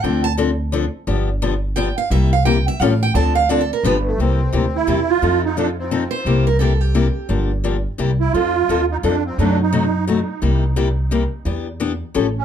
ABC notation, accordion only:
X:1
M:3/4
L:1/8
Q:"Swing" 1/4=173
K:Cmix
V:1 name="Accordion"
z6 | z6 | z6 | z4 z A, |
C3 E2 F- | F _E D C2 z | z6 | z4 z E |
F3 _E D C | D ^D3 z2 | z6 | z4 z ^C |]